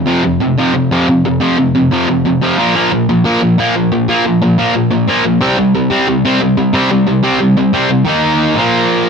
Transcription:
0.07 F2 C3 F3
0.24 F2 C3
0.41 F2 C3
0.58 F2 C3 F3
0.74 F2 C3
0.91 F2 C3 F3
1.08 F2 C3
1.25 F2 C3
1.41 F2 C3 F3
1.58 F2 C3
1.75 F2 C3
1.91 F2 C3 F3
2.08 F2 C3
2.25 F2 C3
2.41 F2 C3 F3
2.58 A#2 F3 A#3
2.75 A#2 F3 A#3
2.92 A#2 F3
3.09 A#2 F3
3.24 A#2 F3 A#3
3.42 A#2 F3
3.58 A#2 F3 A#3
3.76 A#2 F3
3.92 A#2 F3
4.08 A#2 F3 A#3
4.26 A#2 F3
4.42 A#2 F3
4.58 A#2 F3 A#3
4.74 A#2 F3
4.91 A#2 F3
5.08 A#2 F3 A#3
5.25 A#2 F3
5.41 C3 G3 C4
5.58 C3 G3
5.75 C3 G3
5.90 C3 G3 C4
6.08 C3 G3
6.25 C3 G3 C4
6.41 C3 G3
6.57 C3 G3
6.73 C3 G3 C4
6.91 C3 G3
7.07 C3 G3
7.23 C3 G3 C4
7.40 C3 G3
7.57 C3 G3
7.73 C3 G3 C4
7.90 C3 G3
8.06 D#3 A#3 D#4
8.55 A#2 F3 A#3

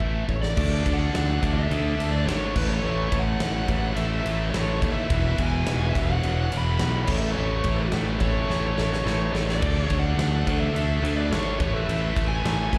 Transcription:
Already playing: E5
0.00 A1 A2 E3 A3, kick
0.27 A1 A2 E3 A4 C#5, kick
0.40 A4 D5, snare
0.56 D2 D3 A3 D4, kick, crash
0.60 D4 A4 E5
0.86 D2 D3 A3 D4, kick, ride
0.92 D5 F#5
1.12 D2 D3 A3 D4, snare, ride
1.40 D2 D3 A3 D4, kick, ride
1.45 D3 D4
1.54 A4 E5
1.69 D2 D3 A3 D4, ride
1.98 D2 D3 A3 D4, ride
2.11 B4 D5
2.26 G#1 D3 A3 D4 A4 C#5, snare, ride
2.51 A2 E4 B4
2.56 A1 E3 A3 B4, kick, crash
2.67 A4 C#5
2.84 A1 A2 E3 A3
3.12 A1 A2 E3 A3, kick, ride
3.18 C#5 F#5
3.40 A1 A2 E3 A3, snare, ride
3.68 A1 A2 E3 A3, kick, ride
3.94 A1 A2 E3 A4 E5, ride
3.98 A3
4.20 B4 E5
4.25 A1 A2 E3 A3, ride
4.50 A1 A2 E3 A3 A4 C#5, ride
4.54 snare
4.79 D#2 A2 E3 A3 A4 C#5, kick
4.83 A2, ride
4.92 B4 E5
5.08 E1 E2 B2 E3 B3 F#4, kick, ride
5.36 E1 E2 B2 E3, kick, ride
5.43 E5 G#5
5.64 E2 B2 E3, snare, ride
5.68 E1
5.89 E2 B2 E3 B4 E5
5.95 E1 E2, kick, snare, ride
6.03 C#5 F#5
6.21 E1 E2 B2 E3, ride
6.49 E1 E2 B2 E3, ride
6.57 F#5 B5
6.78 B1 E2 B2 E3, snare, ride
7.05 A1 A2 E3 A3 E4 A4 B4 C#5, kick, crash
7.09 A3
7.18 B4 E5
7.33 A1 A2 E3 A3 A4 C#5
7.63 A1 A2 E3 A3, kick, ride
7.92 A1 A2 E3 A3, snare, ride
8.20 A1 A2 E3 A3 A4 C#5, kick, ride
8.47 A1 A2 E3 A3, snare
8.76 A1 A2 E3 A3, snare
8.93 snare
9.04 A1 A2 E3 A3, snare
9.32 A1 A2 E3 A3 A4 C#5, snare
9.47 A4 D5, snare
9.61 D2 D3 A3 D4 A4 E5, kick, crash
9.82 G#4 C#5
9.90 D2 D3 A3 D4, kick, ride
9.99 D5 F#5
10.17 D2 D3 A3 D4, snare, ride
10.46 D2 D3 A3 D4, kick, snare, ride
10.60 A4 E5
10.74 D2 D3 A3 D4, ride
11.02 D2 D3 A3 D4, ride
11.15 B4 D5
11.30 G#1 D3 A3 D4 A4 C#5, snare, ride
11.59 A1 A2 E3 A3 E4 A4 B4 C#5, kick, ride
11.75 B4 E5
11.88 A1 A2 E3 A3, ride
12.16 A1 A2 E3 A3, kick, ride
12.28 E5 G#5
12.45 A1 A2 E3 A3, snare, ride
12.73 A1 A2 E3 A3, kick, ride

